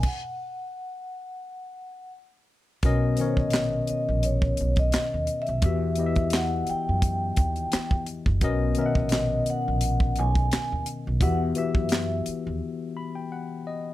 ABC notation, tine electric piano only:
X:1
M:4/4
L:1/16
Q:"Swing 16ths" 1/4=86
K:B
V:1 name="Tine electric piano"
z16 | [B,,B,CAd]2 [D,B,CAc]6 z8 | [E,B,F=Ge]2 [E,B,EGde]6 z8 | [B,,B,CAd]2 [D,B,CAef]6 z8 |
[E,B,F=Ge]2 [E,B,FGe]6 z2 b =g f2 d2 |]